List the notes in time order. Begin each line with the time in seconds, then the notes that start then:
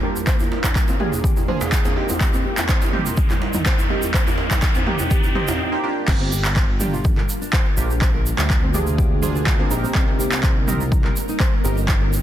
Already playing: G3 A#3 D4 F4 A#4, riser
0.03 A#3 D4 F4 G4 A#4
0.15 djembe tone, shaker
0.26 G#3 D4 C5, kick, clap, shaker
0.39 A#4, djembe tone, shaker
0.52 djembe slap
0.64 D4, kick, clap, djembe tone, shaker
0.76 kick, clap, shaker
0.88 C4, djembe slap, djembe tone, shaker
1.00 A#3 D4 F4 G4 G#4, mid tom
1.12 djembe tone, shaker
1.24 G4, kick, mid tom, shaker
1.36 djembe tone, shaker
1.48 A#3 D4 F4 G#4 C5, mid tom
1.61 D4, djembe slap, djembe tone, shaker
1.72 kick, clap, shaker
1.85 A#3 C4 D4 F4 G#4, djembe slap, djembe tone, shaker
1.96 A#3 C4 D#4 G4
2.09 C4, djembe tone, shaker
2.21 G3 C4 D#4 A#4, kick, clap, shaker
2.33 C4, djembe tone, shaker
2.45 G4
2.57 clap, djembe tone, shaker
2.69 C5, kick, clap, shaker
2.82 djembe slap, djembe tone, shaker
2.93 G3 A#3 C4 D#4 G4, mid tom
3.06 F4, djembe tone, shaker
3.17 kick, mid tom, shaker
3.30 A#4, clap, djembe tone, shaker
3.42 djembe slap
3.53 D#4, mid tom, djembe tone, shaker
3.65 C5, kick, clap, shaker
3.79 djembe tone, shaker
3.90 A#3 C4 D#4 G4 A#4
4.02 djembe tone, shaker
4.14 C5, kick, clap, shaker
4.27 A#4, djembe tone, shaker
4.38 djembe slap
4.51 D#4, kick, clap, djembe tone, shaker
4.62 kick, clap, shaker
4.75 C4, djembe slap, djembe tone, shaker
4.87 A#3 C4 D#4 G4, mid tom
4.99 djembe tone, shaker
5.11 G4, kick, mid tom, shaker
5.23 djembe tone, shaker
5.35 A#3 C4 D#4 G4 C5, mid tom
5.48 D#4, djembe slap, djembe tone, shaker
5.72 A#3 C4 D#4 G4
5.83 A#3 D4 F4 G4
6.08 G1 G3 A#3 C4 D4 F4 A#4, kick, clap, crash, shaker
6.20 C4
6.32 G4, shaker
6.45 clap, shaker
6.56 C5, kick, clap, shaker
6.80 G3 A#3 D4 F4 G4, mid tom, shaker
6.93 F4, shaker
7.04 kick, mid tom, shaker
7.17 A#4, clap
7.29 shaker
7.41 D4, shaker
7.53 C5, kick, clap, shaker
7.77 A#1 A#3 D4 F4 G4 A#4, shaker
7.90 shaker
8.01 G#3 D4 C5, kick, clap, shaker
8.14 A#4
8.26 shaker
8.38 D2 D4, clap, shaker
8.50 kick, clap, shaker
8.63 C4
8.74 A#3 D4 F4 G4 G#4, mid tom, shaker
8.87 shaker
8.98 G4, kick, mid tom, shaker
9.22 A#3 D4 F4 G#4 C5, mid tom, shaker
9.35 D4, shaker
9.47 kick, clap, shaker
9.59 A#3 C4 D4 F4 G#4
9.71 A#1 C4 D#4 G4 A#4, shaker
9.84 C4, shaker
9.95 C2 G3 C4 D#4, kick, clap, shaker
10.08 C4
10.19 G4, shaker
10.32 clap, shaker
10.43 C5, kick, clap, shaker
10.67 G3 C4 D#4 G4 A#4, mid tom, shaker
10.80 F4, shaker
10.92 kick, mid tom, shaker
11.04 A#4, clap
11.16 shaker
11.28 D#4, shaker
11.40 C5, kick, clap, shaker
11.64 G1 C4 D#4 G4 A#4, shaker
11.77 shaker
11.88 C5, kick, clap, shaker
12.01 A#4
12.13 shaker